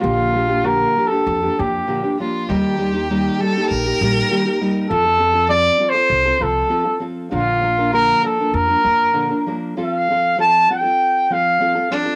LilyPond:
<<
  \new Staff \with { instrumentName = "Trumpet" } { \time 4/4 \key bes \major \tempo 4 = 99 f'4 \tuplet 3/2 { bes'4 a'8~ } a'8 g'4 r8 | r1 | a'4 \tuplet 3/2 { d''4 c''8~ } c''8 a'4 r8 | f'4 bes'8 a'8 bes'4. r8 |
\key f \major f''4 a''8 g''4 f''4 r8 | }
  \new Staff \with { instrumentName = "Violin" } { \time 4/4 \key bes \major r2. r8 f'8 | g'4. a'8 bes'4.~ bes'16 r16 | r1 | r1 |
\key f \major r2. r8 d'8 | }
  \new Staff \with { instrumentName = "Nylon-string guitar" } { \time 4/4 \key bes \major <bes, d f bes d' g'>8 <f bes d' g'>16 <f bes d' g'>16 <bes, d f bes d' g'>8 <f bes d' g'>16 <f bes d' g'>8 <f bes d' g'>16 <f bes d' g'>8 <bes, d f bes d' g'>16 <f bes d' g'>16 <f bes d' g'>8 | <ees g bes ees' g'>8 <g bes ees' g'>16 <bes ees' g'>16 <ees g bes ees' g'>8 <g bes ees' g'>16 <bes ees' g'>8 <bes ees' g'>16 <g bes ees' g'>8 <ees g bes ees' g'>16 <bes ees' g'>16 <g bes ees' g'>8 | <f c' f' a'>16 <c' f' a'>16 <f c' f' a'>16 <c' f' a'>16 <f c' f' a'>8 <f c' f' a'>16 <c' f' a'>8 <c' f' a'>16 <f c' f' a'>8 <f c' f' a'>16 <c' f' a'>16 <f c' f' a'>8 | <bes, d f bes d' bes'>8 <f bes d' bes'>16 <f bes d' bes'>16 <bes, d f bes d' bes'>8 <f bes d' bes'>16 <f bes d' bes'>8 <f bes d' bes'>16 <f bes d' bes'>8 <bes, d f bes d' bes'>16 <f bes d' bes'>16 <f bes d' bes'>8 |
\key f \major <f c' f' a'>8 <f c' f' a'>8 <f c' f' a'>8 <f c' f' a'>16 <c' f' a'>8. <f c' f' a'>8 <f c' f' a'>16 <c' f' a'>16 <f c' f' a'>16 <c' f' a'>16 | }
  \new Staff \with { instrumentName = "Upright bass" } { \clef bass \time 4/4 \key bes \major bes,,2 f,8 f,8 r4 | ees,2 bes,,8 bes,,8 r4 | f,2 c,8 c,8 r4 | bes,,2 f,8 f,8 r4 |
\key f \major r1 | }
>>